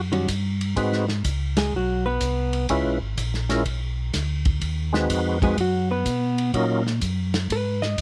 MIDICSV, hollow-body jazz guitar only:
0, 0, Header, 1, 2, 480
1, 0, Start_track
1, 0, Tempo, 480769
1, 764, Time_signature, 4, 2, 24, 8
1, 7998, End_track
2, 0, Start_track
2, 0, Title_t, "Hollow-body jazz guitar"
2, 0, Program_c, 0, 26
2, 118, Note_on_c, 0, 51, 56
2, 122, Note_on_c, 0, 55, 66
2, 127, Note_on_c, 0, 61, 74
2, 131, Note_on_c, 0, 66, 65
2, 264, Note_off_c, 0, 51, 0
2, 267, Note_off_c, 0, 55, 0
2, 269, Note_off_c, 0, 61, 0
2, 271, Note_off_c, 0, 66, 0
2, 1573, Note_on_c, 0, 56, 67
2, 1578, Note_on_c, 0, 68, 74
2, 1724, Note_off_c, 0, 68, 0
2, 1725, Note_off_c, 0, 56, 0
2, 1760, Note_on_c, 0, 54, 64
2, 1760, Note_on_c, 0, 66, 65
2, 2053, Note_off_c, 0, 66, 0
2, 2055, Note_off_c, 0, 54, 0
2, 2055, Note_on_c, 0, 71, 95
2, 2063, Note_on_c, 0, 59, 73
2, 2650, Note_off_c, 0, 71, 0
2, 2653, Note_off_c, 0, 59, 0
2, 5424, Note_on_c, 0, 56, 62
2, 5427, Note_on_c, 0, 68, 76
2, 5570, Note_off_c, 0, 68, 0
2, 5571, Note_off_c, 0, 56, 0
2, 5596, Note_on_c, 0, 66, 82
2, 5601, Note_on_c, 0, 54, 59
2, 5893, Note_off_c, 0, 66, 0
2, 5896, Note_off_c, 0, 54, 0
2, 5899, Note_on_c, 0, 59, 69
2, 5905, Note_on_c, 0, 71, 77
2, 6493, Note_off_c, 0, 59, 0
2, 6493, Note_off_c, 0, 71, 0
2, 7511, Note_on_c, 0, 71, 74
2, 7809, Note_on_c, 0, 75, 101
2, 7811, Note_off_c, 0, 71, 0
2, 7998, Note_off_c, 0, 75, 0
2, 7998, End_track
0, 0, End_of_file